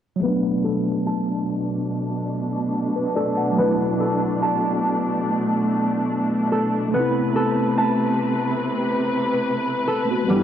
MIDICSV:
0, 0, Header, 1, 4, 480
1, 0, Start_track
1, 0, Tempo, 419580
1, 257, Time_signature, 4, 2, 24, 8
1, 11937, End_track
2, 0, Start_track
2, 0, Title_t, "Harp"
2, 0, Program_c, 0, 46
2, 257, Note_on_c, 0, 59, 91
2, 736, Note_on_c, 0, 69, 92
2, 1216, Note_on_c, 0, 81, 94
2, 3602, Note_off_c, 0, 69, 0
2, 3616, Note_on_c, 0, 69, 85
2, 3810, Note_off_c, 0, 59, 0
2, 4097, Note_off_c, 0, 81, 0
2, 4097, Note_on_c, 0, 59, 93
2, 4572, Note_off_c, 0, 69, 0
2, 4576, Note_on_c, 0, 69, 91
2, 5056, Note_on_c, 0, 81, 92
2, 7443, Note_off_c, 0, 69, 0
2, 7457, Note_on_c, 0, 69, 84
2, 7650, Note_off_c, 0, 59, 0
2, 7937, Note_off_c, 0, 81, 0
2, 7937, Note_on_c, 0, 59, 85
2, 8412, Note_off_c, 0, 69, 0
2, 8417, Note_on_c, 0, 69, 88
2, 8896, Note_on_c, 0, 81, 92
2, 11283, Note_off_c, 0, 69, 0
2, 11297, Note_on_c, 0, 69, 83
2, 11490, Note_off_c, 0, 59, 0
2, 11777, Note_off_c, 0, 81, 0
2, 11777, Note_on_c, 0, 55, 87
2, 11937, Note_off_c, 0, 55, 0
2, 11937, Note_off_c, 0, 69, 0
2, 11937, End_track
3, 0, Start_track
3, 0, Title_t, "Tine electric piano"
3, 0, Program_c, 1, 4
3, 183, Note_on_c, 1, 54, 76
3, 227, Note_on_c, 1, 57, 68
3, 271, Note_on_c, 1, 59, 67
3, 314, Note_on_c, 1, 62, 81
3, 459, Control_c, 1, 64, 127
3, 3385, Note_on_c, 1, 71, 68
3, 3604, Note_off_c, 1, 71, 0
3, 3610, Note_on_c, 1, 74, 79
3, 3836, Note_off_c, 1, 74, 0
3, 3859, Note_on_c, 1, 78, 71
3, 4014, Note_off_c, 1, 54, 0
3, 4026, Note_on_c, 1, 54, 71
3, 4036, Note_off_c, 1, 57, 0
3, 4058, Note_off_c, 1, 59, 0
3, 4070, Note_on_c, 1, 57, 70
3, 4080, Note_off_c, 1, 62, 0
3, 4081, Note_off_c, 1, 78, 0
3, 4114, Note_on_c, 1, 59, 72
3, 4158, Note_on_c, 1, 64, 82
3, 7856, Note_off_c, 1, 54, 0
3, 7859, Note_off_c, 1, 57, 0
3, 7873, Note_on_c, 1, 57, 76
3, 7900, Note_off_c, 1, 59, 0
3, 7916, Note_on_c, 1, 59, 70
3, 7922, Note_off_c, 1, 64, 0
3, 7951, Control_c, 1, 64, 0
3, 7961, Note_on_c, 1, 60, 71
3, 8004, Note_on_c, 1, 64, 76
3, 8159, Control_c, 1, 64, 127
3, 11459, Note_off_c, 1, 57, 0
3, 11481, Note_off_c, 1, 59, 0
3, 11498, Note_on_c, 1, 57, 57
3, 11503, Note_off_c, 1, 60, 0
3, 11520, Note_on_c, 1, 59, 51
3, 11525, Note_off_c, 1, 64, 0
3, 11542, Note_on_c, 1, 60, 54
3, 11564, Note_on_c, 1, 66, 64
3, 11718, Note_on_c, 1, 55, 67
3, 11747, Note_off_c, 1, 59, 0
3, 11758, Note_off_c, 1, 57, 0
3, 11761, Note_on_c, 1, 59, 72
3, 11779, Note_off_c, 1, 60, 0
3, 11790, Note_off_c, 1, 66, 0
3, 11795, Control_c, 1, 64, 0
3, 11805, Note_on_c, 1, 62, 66
3, 11849, Note_on_c, 1, 64, 83
3, 11937, Note_off_c, 1, 55, 0
3, 11937, Note_off_c, 1, 59, 0
3, 11937, Note_off_c, 1, 62, 0
3, 11937, Note_off_c, 1, 64, 0
3, 11937, End_track
4, 0, Start_track
4, 0, Title_t, "String section"
4, 0, Program_c, 2, 48
4, 257, Note_on_c, 2, 47, 77
4, 257, Note_on_c, 2, 62, 88
4, 258, Note_on_c, 2, 57, 73
4, 7891, Note_off_c, 2, 47, 0
4, 7891, Note_off_c, 2, 62, 0
4, 7936, Note_on_c, 2, 48, 79
4, 7937, Note_on_c, 2, 71, 92
4, 11732, Note_off_c, 2, 57, 0
4, 11738, Note_off_c, 2, 48, 0
4, 11778, Note_on_c, 2, 43, 79
4, 11778, Note_on_c, 2, 52, 72
4, 11937, Note_off_c, 2, 43, 0
4, 11937, Note_off_c, 2, 52, 0
4, 11937, Note_off_c, 2, 71, 0
4, 11937, End_track
0, 0, End_of_file